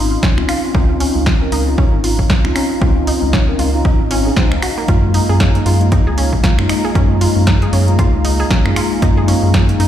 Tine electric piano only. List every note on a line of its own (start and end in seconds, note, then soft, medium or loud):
0.00 0.34 C4 medium
0.00 0.34 C#4 medium
0.00 0.35 D#4 medium
0.00 0.35 F4 medium
0.37 0.72 C4 medium
0.37 0.72 C#4 medium
0.37 0.72 D#4 medium
0.37 0.72 F4 medium
0.73 1.37 C4 medium
0.73 1.38 C#4 medium
0.73 1.38 D#4 medium
0.73 1.38 F4 loud
1.41 1.61 C4 medium
1.41 1.61 C#4 medium
1.41 1.61 D#4 medium
1.41 1.61 A#4 medium
1.66 2.41 C4 medium
1.66 2.41 C#4 medium
1.66 2.41 D#4 medium
1.66 2.42 F4 medium
2.44 2.79 C4 medium
2.44 2.79 C#4 medium
2.44 2.79 D#4 medium
2.44 2.79 F4 medium
2.80 3.44 C4 loud
2.80 3.45 C#4 medium
2.80 3.45 D#4 medium
2.80 3.45 F4 loud
3.48 3.67 C4 medium
3.48 3.68 C#4 medium
3.48 3.68 D#4 medium
3.48 3.68 A#4 medium
3.74 4.08 C4 medium
3.74 4.09 C#4 medium
3.74 4.09 D#4 medium
3.74 4.09 F4 medium
4.10 4.22 C4 medium
4.10 4.22 C#4 medium
4.10 4.22 D#4 medium
4.10 4.23 F4 medium
4.25 4.35 C4 medium
4.25 4.35 C#4 medium
4.25 4.35 D#4 medium
4.25 4.35 G#4 medium
4.36 4.51 C4 medium
4.36 4.51 C#4 medium
4.36 4.52 D#4 medium
4.36 4.52 F4 loud
4.87 5.51 G#3 medium
4.87 5.51 A#3 medium
4.87 5.52 D#4 medium
4.87 5.52 F4 loud
5.55 5.74 G#3 medium
5.55 5.75 A#3 medium
5.55 5.75 D#4 medium
5.55 5.75 G#4 medium
5.80 6.54 G#3 medium
5.80 6.55 A#3 medium
5.80 6.55 D#4 medium
5.80 6.56 F4 medium
6.58 6.92 G#3 medium
6.58 6.93 A#3 medium
6.58 6.93 D#4 medium
6.58 6.93 F4 medium
6.94 7.58 G#3 medium
6.94 7.58 A#3 medium
6.94 7.59 D#4 medium
6.94 7.59 F4 loud
7.62 7.81 G#3 medium
7.62 7.82 A#3 medium
7.62 7.82 D#4 medium
7.62 7.82 G#4 medium
7.87 8.61 G#3 medium
7.87 8.62 A#3 medium
7.87 8.62 D#4 medium
7.87 8.63 F4 medium
8.65 8.99 G#3 medium
8.65 9.00 A#3 medium
8.65 9.00 D#4 medium
8.65 9.00 F4 medium
9.01 9.65 G#3 medium
9.01 9.65 A#3 medium
9.01 9.66 D#4 medium
9.01 9.66 F4 loud
9.69 9.88 G#3 medium
9.69 9.88 A#3 medium
9.69 9.88 D#4 medium
9.69 9.88 G#4 medium